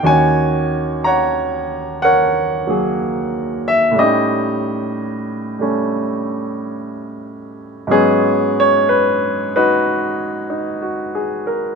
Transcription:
0.03 D#2 D#3 C#4 F#4 G#5
0.08 C#5
1.04 C#5 F#5 A#5
2.02 A#4 C#5 F#5
2.67 F#3 A#3 G#4
3.68 E5
3.91 A2 G3
3.99 C#4 D#4 G4 D#5
5.59 G3 A3 C#4
7.87 G#2 F#3 G#3 B3 C#4
7.91 G#4
8.60 C#5
8.89 B4
9.56 D#4 F#4 B4
10.50 D#4
10.82 F#4
11.15 G#4
11.47 A#4

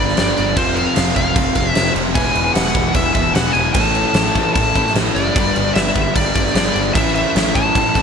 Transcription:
Already playing: G1 G2 D3 G3 B3 D4 D5
0.00 G2 D3
0.08 snare
0.17 G1 G2 D3 G3 D5, snare, crash
0.37 G1, crash
0.55 F1 F2 C3 F3 A3 C4 F4 C5, kick, crash
0.76 F5, crash
0.96 F1, snare, crash
1.07 snare
1.15 F1 F2 C3 F3 F5, kick, crash
1.36 F1, kick, crash
1.55 F1 F2 C3 F3, kick, crash
1.68 E5
1.75 F1 F2 C3 F3, snare, crash
1.95 F1, crash
2.15 E1 E2 B2 E3 G#3 B3 E4 G#5, kick, crash
2.35 E1, crash
2.54 E1 F#5, snare, crash
2.66 snare
2.74 E1 E2 B2 E3, kick, crash
2.94 E1 E5, kick, crash
3.14 E1 B2 E3 E5, kick, crash
3.18 E2
3.33 E1 E2 B2 E3 F#5, snare, crash
3.52 E1 G#5, crash
3.73 A1 A2 E3 A3 C#4 E4 A5, kick, crash
3.95 crash
4.14 A1, snare, crash
4.26 snare
4.34 A1 A2 E3 A3, kick, crash
4.54 A1 A5, kick, crash
4.74 A1 E3 A3, kick, crash
4.79 A2
4.87 snare
4.94 A1 A2 E3 A3, snare, crash
5.15 F#1 D5, crash
5.34 G1 G2 D3 G3 B3 D4, kick, crash
5.56 G1, crash
5.74 G1 E5, snare, crash
5.87 snare
5.96 G1 G2 D3 G3, kick, crash
6.16 G1 D5, kick, crash
6.35 G1 G2 D3 G3, kick, crash
6.46 snare
6.55 G1 G2 D3 G3 D5, snare, crash
6.75 G1, crash
6.94 A1 A2 E3 A3 C#4 E4 E5, kick, crash
7.15 E5, crash
7.35 A1, snare, crash
7.55 A1 A2 E3 A3 A5, kick, crash
7.75 A1, kick, crash
7.93 A1 A2 E3 A3, kick, crash

